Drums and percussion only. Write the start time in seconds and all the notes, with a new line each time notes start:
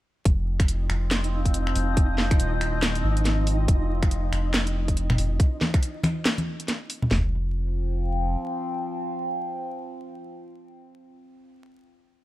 0.25 kick, closed hi-hat
0.60 finger snap, kick, closed hi-hat
0.68 closed hi-hat
0.90 finger snap, open hi-hat
1.11 snare, clap, closed hi-hat
1.24 closed hi-hat
1.45 kick, closed hi-hat
1.54 closed hi-hat
1.67 finger snap
1.75 open hi-hat
1.97 kick, closed hi-hat
2.18 snare
2.31 finger snap, kick, closed hi-hat
2.40 closed hi-hat
2.61 finger snap, open hi-hat
2.83 snare, clap, closed hi-hat
2.95 closed hi-hat
3.17 closed hi-hat
3.25 snare, closed hi-hat
3.47 open hi-hat
3.68 kick, closed hi-hat
4.03 finger snap, kick, closed hi-hat
4.11 closed hi-hat
4.33 finger snap, open hi-hat
4.54 snare, clap, closed hi-hat
4.67 closed hi-hat
4.88 kick, closed hi-hat
4.97 closed hi-hat
5.10 finger snap, low conga
5.18 open hi-hat
5.40 kick, closed hi-hat
5.61 snare, high conga
5.74 finger snap, kick, closed hi-hat
5.83 closed hi-hat
6.03 finger snap, open hi-hat, high conga
6.26 snare, clap, closed hi-hat
6.38 closed hi-hat, high conga
6.60 closed hi-hat
6.68 snare, closed hi-hat
6.90 open hi-hat
7.02 low conga
7.11 snare, floor tom